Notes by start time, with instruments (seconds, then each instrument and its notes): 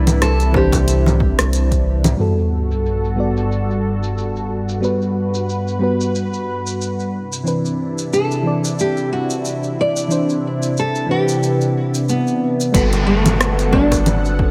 Already playing: analog synth bass C2, analog synth pad C3 D4 E4, fm electric piano E3 C4 D4 B4, nylon-string guitar B4
0.07 closed hi-hat, low conga, shaker
0.22 nylon-string guitar A4, cross-stick, closed hi-hat, shaker
0.40 closed hi-hat, shaker
0.52 fm electric piano E3 C4 D4, kick, high bongo
0.56 nylon-string guitar G4, fm electric piano C5
0.72 kick, closed hi-hat, high bongo, shaker
0.88 closed hi-hat, shaker
1.06 low conga, shaker
1.20 kick
1.38 analog synth bass C2, cross-stick, closed hi-hat, shaker
1.53 closed hi-hat, shaker
1.71 kick, closed hi-hat, shaker
2.04 closed hi-hat, low conga, shaker
2.17 analog synth pad G2 A4, fm electric piano G3 B3 F#4, sub drop, shaker
2.21 analog synth pad F#4, fm electric piano A4
2.38 shaker
2.71 shaker
2.86 shaker
3.05 shaker
3.16 fm electric piano G3 B3 F#4
3.20 fm electric piano D5
3.37 shaker
3.52 shaker
3.70 shaker
4.03 shaker
4.18 shaker
4.36 shaker
4.69 shaker
4.80 fm electric piano G3 B3 F#4, analog synth pad B4, shaker
4.84 fm electric piano B4
5.02 shaker
5.34 shaker
5.49 shaker
5.68 shaker
5.79 fm electric piano G3 B3 F#4
5.83 fm electric piano B4
6.01 shaker
6.15 shaker
6.34 shaker
6.67 shaker
6.81 shaker
7.00 shaker
7.13 analog synth pad C3 D4 E4
7.33 shaker
7.44 fm electric piano E3 C4 D4, shaker
7.48 fm electric piano B4
7.65 shaker
7.98 shaker
8.13 nylon-string guitar A4, shaker
8.31 shaker
8.43 fm electric piano E3 C4 D4
8.47 fm electric piano D5
8.64 shaker
8.79 nylon-string guitar G4, shaker
8.97 shaker
9.13 nylon-string guitar F#4
9.30 shaker
9.45 shaker
9.63 shaker
9.81 nylon-string guitar D5
9.96 shaker
10.08 fm electric piano E3 C4 D4 C5, shaker
10.29 shaker
10.63 shaker
10.77 nylon-string guitar A4, shaker
10.95 shaker
11.06 fm electric piano C3 E3 D4
11.11 nylon-string guitar G4, fm electric piano B4
11.28 shaker
11.43 shaker
11.61 shaker
11.74 nylon-string guitar F#4
11.94 shaker
12.09 nylon-string guitar B3, shaker
12.27 shaker
12.60 shaker
12.72 analog synth bass G1, fm electric piano G3 B3 F#4 A4, nylon-string guitar B3, analog synth pad B3 A4 F#5, kick, closed hi-hat, downlifter, shaker
12.93 closed hi-hat, high bongo, shaker
13.07 nylon-string guitar A3
13.26 closed hi-hat, low conga, shaker
13.41 cross-stick, closed hi-hat, shaker
13.59 closed hi-hat, shaker
13.71 fm electric piano G3 B3 F#4, nylon-string guitar D4, kick, high bongo
13.75 fm electric piano D5
13.91 kick, closed hi-hat, high bongo, shaker
14.06 closed hi-hat, low conga, shaker
14.20 nylon-string guitar C4
14.25 shaker
14.39 kick